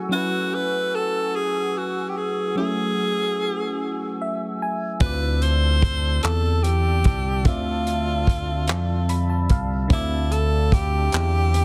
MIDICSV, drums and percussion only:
0, 0, Header, 1, 2, 480
1, 0, Start_track
1, 0, Tempo, 816327
1, 64, Time_signature, 6, 3, 24, 8
1, 6848, End_track
2, 0, Start_track
2, 0, Title_t, "Drums"
2, 2941, Note_on_c, 9, 42, 72
2, 2944, Note_on_c, 9, 36, 123
2, 3000, Note_off_c, 9, 42, 0
2, 3003, Note_off_c, 9, 36, 0
2, 3186, Note_on_c, 9, 42, 47
2, 3245, Note_off_c, 9, 42, 0
2, 3425, Note_on_c, 9, 36, 93
2, 3434, Note_on_c, 9, 42, 54
2, 3484, Note_off_c, 9, 36, 0
2, 3492, Note_off_c, 9, 42, 0
2, 3662, Note_on_c, 9, 42, 71
2, 3677, Note_on_c, 9, 39, 120
2, 3721, Note_off_c, 9, 42, 0
2, 3736, Note_off_c, 9, 39, 0
2, 3906, Note_on_c, 9, 42, 56
2, 3965, Note_off_c, 9, 42, 0
2, 4141, Note_on_c, 9, 42, 60
2, 4147, Note_on_c, 9, 36, 82
2, 4200, Note_off_c, 9, 42, 0
2, 4206, Note_off_c, 9, 36, 0
2, 4381, Note_on_c, 9, 42, 77
2, 4383, Note_on_c, 9, 36, 109
2, 4440, Note_off_c, 9, 42, 0
2, 4442, Note_off_c, 9, 36, 0
2, 4627, Note_on_c, 9, 42, 46
2, 4686, Note_off_c, 9, 42, 0
2, 4864, Note_on_c, 9, 36, 92
2, 4876, Note_on_c, 9, 42, 58
2, 4923, Note_off_c, 9, 36, 0
2, 4934, Note_off_c, 9, 42, 0
2, 5101, Note_on_c, 9, 42, 81
2, 5116, Note_on_c, 9, 39, 111
2, 5160, Note_off_c, 9, 42, 0
2, 5174, Note_off_c, 9, 39, 0
2, 5346, Note_on_c, 9, 42, 54
2, 5404, Note_off_c, 9, 42, 0
2, 5583, Note_on_c, 9, 42, 53
2, 5587, Note_on_c, 9, 36, 88
2, 5642, Note_off_c, 9, 42, 0
2, 5646, Note_off_c, 9, 36, 0
2, 5821, Note_on_c, 9, 42, 78
2, 5823, Note_on_c, 9, 36, 126
2, 5880, Note_off_c, 9, 42, 0
2, 5881, Note_off_c, 9, 36, 0
2, 6066, Note_on_c, 9, 42, 45
2, 6125, Note_off_c, 9, 42, 0
2, 6304, Note_on_c, 9, 36, 98
2, 6313, Note_on_c, 9, 42, 60
2, 6363, Note_off_c, 9, 36, 0
2, 6372, Note_off_c, 9, 42, 0
2, 6541, Note_on_c, 9, 42, 84
2, 6556, Note_on_c, 9, 39, 106
2, 6600, Note_off_c, 9, 42, 0
2, 6614, Note_off_c, 9, 39, 0
2, 6787, Note_on_c, 9, 42, 57
2, 6845, Note_off_c, 9, 42, 0
2, 6848, End_track
0, 0, End_of_file